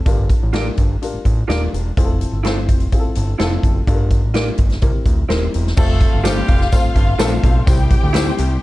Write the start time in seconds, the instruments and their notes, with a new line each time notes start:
Already playing: upright piano C4 A4
0.06 analog synth bass G1, upright piano D4 F4 G4 A#4, kick, closed hi-hat
0.30 kick, closed hi-hat
0.43 analog synth bass A1
0.53 upright piano D4 F4 G4 A4, clean electric guitar F4 A#4 D5, snare, closed hi-hat
0.61 upright piano A#4
0.77 analog synth bass G1, kick, closed hi-hat
1.02 upright piano D4 F4 G4 A#4, closed hi-hat
1.14 analog synth bass A1
1.25 analog synth bass A1, kick, closed hi-hat
1.48 analog synth bass D#1, upright piano D4 F4 G4 A#4, clean electric guitar F4 A#4 D5, snare, closed hi-hat
1.74 analog synth bass E1, closed hi-hat
1.97 analog synth bass F1, upright piano C4 E4 F4 G#4, kick, closed hi-hat
2.04 upright piano A4
2.21 closed hi-hat
2.33 analog synth bass G1
2.43 upright piano C4 E4 F4 C5, clean electric guitar E4 A4 C5, snare, closed hi-hat
2.69 analog synth bass F1, kick, closed hi-hat
2.80 closed hi-hat
2.92 upright piano C4 E4 F4 G#4, kick, closed hi-hat
2.99 upright piano A4
3.05 analog synth bass G1
3.15 analog synth bass G1, closed hi-hat
3.38 analog synth bass F1, upright piano C4 E4 F4 A4, clean electric guitar E4 A4 C5, snare, closed hi-hat
3.63 analog synth bass F#1, kick, closed hi-hat
3.87 analog synth bass G1, upright piano D4 F4 G4 A4, kick, closed hi-hat
3.94 upright piano A#4
4.11 kick, closed hi-hat
4.23 analog synth bass A1
4.34 upright piano D4 F4 G4 A#4, clean electric guitar F4 A#4 D5, snare, closed hi-hat
4.58 analog synth bass G1, kick, closed hi-hat
4.70 snare, closed hi-hat
4.82 analog synth bass C2, upright piano C4 E4 G4 A#4, kick, closed hi-hat
4.95 analog synth bass D2
5.05 analog synth bass D2, kick, closed hi-hat
5.29 analog synth bass D#1, upright piano C4 E4 G4 A#4, clean electric guitar E4 A#4 C5, snare, closed hi-hat
5.54 analog synth bass E1, closed hi-hat
5.67 snare
5.77 analog synth bass F1, upright piano A3 C4 F4 A4 C5, horn section A3 A4, string section F4 F5, kick, crash, tambourine
6.01 kick, closed hi-hat
6.15 analog synth bass G1
6.23 horn section G3 G4, upright piano A3 C4 F4 A4 C5, clean electric guitar F4 A4 C5, snare, closed hi-hat, tambourine
6.48 analog synth bass F1, kick, closed hi-hat
6.61 snare
6.72 horn section F3 F4, upright piano A3 C4 F4 A4 C5, kick, closed hi-hat, tambourine
6.85 analog synth bass G1
6.95 analog synth bass G1, horn section F3 F4, kick, closed hi-hat
7.19 analog synth bass A#1, upright piano A3 C4 F4 A4 A#4, clean electric guitar F4 A4 C5, snare, closed hi-hat, tambourine
7.26 upright piano C5
7.44 analog synth bass B1, kick, closed hi-hat
7.66 analog synth bass C2, upright piano G3 C4 E4 G4 C5, string section G4 G5, kick, closed hi-hat, tambourine
7.90 kick, closed hi-hat
8.03 analog synth bass D2
8.13 upright piano G3 C4 E4 G4 C5, clean electric guitar E4 G4 C5, snare, closed hi-hat, tambourine
8.38 analog synth bass C2, closed hi-hat